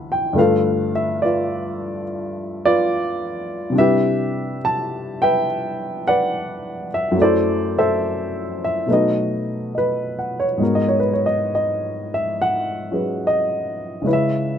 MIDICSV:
0, 0, Header, 1, 2, 480
1, 0, Start_track
1, 0, Tempo, 851064
1, 201, Time_signature, 4, 2, 24, 8
1, 4522, Tempo, 863309
1, 8173, End_track
2, 0, Start_track
2, 0, Title_t, "Grand piano"
2, 0, Program_c, 0, 0
2, 0, Control_c, 0, 64, 127
2, 0, Note_on_c, 0, 38, 51
2, 0, Note_on_c, 0, 50, 35
2, 0, Note_on_c, 0, 52, 33
2, 0, Note_on_c, 0, 54, 43
2, 0, Note_on_c, 0, 62, 33
2, 0, Note_on_c, 0, 64, 41
2, 0, Note_on_c, 0, 69, 38
2, 0, Note_on_c, 0, 71, 56
2, 0, Note_on_c, 0, 76, 49
2, 0, Note_on_c, 0, 78, 50
2, 0, Note_on_c, 0, 83, 69
2, 66, Note_on_c, 0, 79, 63
2, 185, Note_off_c, 0, 50, 0
2, 186, Note_on_c, 0, 43, 52
2, 188, Note_off_c, 0, 38, 0
2, 194, Note_on_c, 0, 50, 45
2, 196, Note_off_c, 0, 76, 0
2, 196, Note_off_c, 0, 78, 0
2, 199, Note_off_c, 0, 52, 0
2, 203, Note_off_c, 0, 54, 0
2, 203, Note_off_c, 0, 62, 0
2, 203, Note_on_c, 0, 57, 51
2, 205, Note_off_c, 0, 71, 0
2, 207, Note_off_c, 0, 69, 0
2, 208, Control_c, 0, 64, 0
2, 208, Note_on_c, 0, 65, 46
2, 209, Note_off_c, 0, 64, 0
2, 210, Note_off_c, 0, 83, 0
2, 213, Note_on_c, 0, 71, 60
2, 215, Note_off_c, 0, 79, 0
2, 219, Note_on_c, 0, 77, 72
2, 223, Note_off_c, 0, 71, 0
2, 230, Note_on_c, 0, 69, 52
2, 232, Note_on_c, 0, 71, 49
2, 300, Control_c, 0, 64, 127
2, 509, Note_off_c, 0, 77, 0
2, 538, Note_on_c, 0, 76, 69
2, 688, Note_on_c, 0, 74, 64
2, 690, Note_off_c, 0, 76, 0
2, 692, Note_off_c, 0, 71, 0
2, 694, Note_off_c, 0, 65, 0
2, 701, Note_on_c, 0, 71, 43
2, 702, Note_on_c, 0, 65, 47
2, 1149, Note_off_c, 0, 69, 0
2, 1462, Note_off_c, 0, 74, 0
2, 1491, Note_off_c, 0, 65, 0
2, 1495, Note_off_c, 0, 71, 0
2, 1497, Note_on_c, 0, 74, 88
2, 1499, Note_on_c, 0, 65, 57
2, 1503, Note_on_c, 0, 71, 53
2, 2086, Note_on_c, 0, 48, 48
2, 2098, Note_off_c, 0, 74, 0
2, 2099, Note_off_c, 0, 65, 0
2, 2100, Note_on_c, 0, 55, 43
2, 2101, Note_off_c, 0, 71, 0
2, 2105, Note_off_c, 0, 43, 0
2, 2109, Note_off_c, 0, 50, 0
2, 2113, Note_off_c, 0, 57, 0
2, 2116, Note_on_c, 0, 62, 44
2, 2120, Control_c, 0, 64, 0
2, 2132, Note_on_c, 0, 64, 41
2, 2134, Note_on_c, 0, 76, 88
2, 2141, Note_on_c, 0, 71, 57
2, 2145, Note_on_c, 0, 67, 56
2, 2227, Control_c, 0, 64, 127
2, 2582, Note_off_c, 0, 76, 0
2, 2622, Note_on_c, 0, 81, 81
2, 2911, Note_off_c, 0, 81, 0
2, 2943, Note_off_c, 0, 71, 0
2, 2943, Note_on_c, 0, 79, 83
2, 2951, Note_on_c, 0, 76, 64
2, 2952, Note_on_c, 0, 71, 61
2, 3069, Note_off_c, 0, 67, 0
2, 3389, Note_off_c, 0, 79, 0
2, 3426, Note_off_c, 0, 71, 0
2, 3426, Note_on_c, 0, 78, 88
2, 3432, Note_on_c, 0, 74, 59
2, 3435, Note_on_c, 0, 71, 63
2, 3872, Note_off_c, 0, 78, 0
2, 3875, Note_off_c, 0, 76, 0
2, 3915, Note_on_c, 0, 76, 71
2, 4013, Note_on_c, 0, 42, 54
2, 4025, Note_off_c, 0, 48, 0
2, 4031, Note_off_c, 0, 74, 0
2, 4031, Note_on_c, 0, 54, 46
2, 4032, Note_off_c, 0, 55, 0
2, 4033, Note_off_c, 0, 71, 0
2, 4040, Note_off_c, 0, 62, 0
2, 4044, Control_c, 0, 64, 0
2, 4047, Note_on_c, 0, 57, 47
2, 4048, Note_off_c, 0, 64, 0
2, 4059, Note_off_c, 0, 76, 0
2, 4064, Note_on_c, 0, 64, 49
2, 4070, Note_on_c, 0, 74, 75
2, 4071, Note_on_c, 0, 69, 55
2, 4079, Note_on_c, 0, 72, 57
2, 4135, Control_c, 0, 64, 127
2, 4382, Note_off_c, 0, 69, 0
2, 4383, Note_off_c, 0, 72, 0
2, 4388, Note_off_c, 0, 74, 0
2, 4391, Note_on_c, 0, 69, 58
2, 4391, Note_on_c, 0, 72, 55
2, 4391, Note_on_c, 0, 76, 74
2, 4862, Note_off_c, 0, 76, 0
2, 4870, Note_on_c, 0, 76, 66
2, 4984, Note_off_c, 0, 42, 0
2, 4988, Note_off_c, 0, 54, 0
2, 4988, Note_off_c, 0, 69, 0
2, 4989, Note_off_c, 0, 72, 0
2, 4992, Note_on_c, 0, 47, 42
2, 4993, Note_off_c, 0, 57, 0
2, 4997, Note_on_c, 0, 54, 42
2, 5001, Note_on_c, 0, 57, 38
2, 5005, Control_c, 0, 64, 0
2, 5010, Note_off_c, 0, 64, 0
2, 5010, Note_on_c, 0, 63, 42
2, 5015, Note_on_c, 0, 71, 48
2, 5016, Note_off_c, 0, 76, 0
2, 5026, Note_on_c, 0, 69, 41
2, 5029, Note_on_c, 0, 75, 64
2, 5032, Note_on_c, 0, 66, 45
2, 5099, Control_c, 0, 64, 127
2, 5475, Note_off_c, 0, 75, 0
2, 5483, Note_on_c, 0, 75, 33
2, 5492, Note_off_c, 0, 71, 0
2, 5501, Note_on_c, 0, 71, 62
2, 5728, Note_on_c, 0, 78, 41
2, 5827, Note_off_c, 0, 71, 0
2, 5844, Note_on_c, 0, 73, 60
2, 5865, Note_off_c, 0, 75, 0
2, 5944, Note_on_c, 0, 44, 41
2, 5953, Note_on_c, 0, 56, 36
2, 5956, Note_off_c, 0, 69, 0
2, 5959, Note_off_c, 0, 66, 0
2, 5960, Note_on_c, 0, 59, 37
2, 5962, Note_off_c, 0, 47, 0
2, 5964, Note_off_c, 0, 54, 0
2, 5967, Note_off_c, 0, 57, 0
2, 5967, Note_on_c, 0, 66, 37
2, 5971, Note_off_c, 0, 63, 0
2, 5971, Control_c, 0, 64, 0
2, 5974, Note_on_c, 0, 70, 48
2, 6037, Note_off_c, 0, 73, 0
2, 6041, Note_on_c, 0, 75, 61
2, 6058, Control_c, 0, 64, 127
2, 6064, Note_off_c, 0, 78, 0
2, 6096, Note_off_c, 0, 75, 0
2, 6115, Note_on_c, 0, 73, 57
2, 6167, Note_off_c, 0, 73, 0
2, 6179, Note_on_c, 0, 71, 51
2, 6233, Note_off_c, 0, 71, 0
2, 6254, Note_on_c, 0, 73, 54
2, 6306, Note_off_c, 0, 73, 0
2, 6325, Note_on_c, 0, 75, 66
2, 6467, Note_off_c, 0, 75, 0
2, 6485, Note_on_c, 0, 75, 62
2, 6798, Note_off_c, 0, 75, 0
2, 6815, Note_on_c, 0, 76, 68
2, 6953, Note_off_c, 0, 76, 0
2, 6967, Note_on_c, 0, 78, 75
2, 7243, Note_on_c, 0, 54, 33
2, 7245, Note_on_c, 0, 61, 33
2, 7253, Note_on_c, 0, 68, 29
2, 7260, Note_on_c, 0, 71, 37
2, 7438, Note_off_c, 0, 78, 0
2, 7442, Note_on_c, 0, 75, 72
2, 7858, Note_on_c, 0, 49, 42
2, 7861, Note_off_c, 0, 56, 0
2, 7868, Note_off_c, 0, 61, 0
2, 7869, Note_off_c, 0, 44, 0
2, 7869, Note_on_c, 0, 56, 41
2, 7876, Note_off_c, 0, 54, 0
2, 7876, Note_off_c, 0, 75, 0
2, 7876, Note_on_c, 0, 61, 38
2, 7877, Note_off_c, 0, 59, 0
2, 7879, Note_off_c, 0, 71, 0
2, 7881, Note_off_c, 0, 66, 0
2, 7881, Note_off_c, 0, 68, 0
2, 7884, Note_off_c, 0, 70, 0
2, 7884, Note_on_c, 0, 64, 39
2, 7887, Control_c, 0, 64, 0
2, 7888, Note_on_c, 0, 71, 48
2, 7920, Note_on_c, 0, 76, 75
2, 7996, Control_c, 0, 64, 127
2, 8173, Note_off_c, 0, 49, 0
2, 8173, Note_off_c, 0, 56, 0
2, 8173, Note_off_c, 0, 61, 0
2, 8173, Note_off_c, 0, 64, 0
2, 8173, Note_off_c, 0, 71, 0
2, 8173, Note_off_c, 0, 76, 0
2, 8173, End_track
0, 0, End_of_file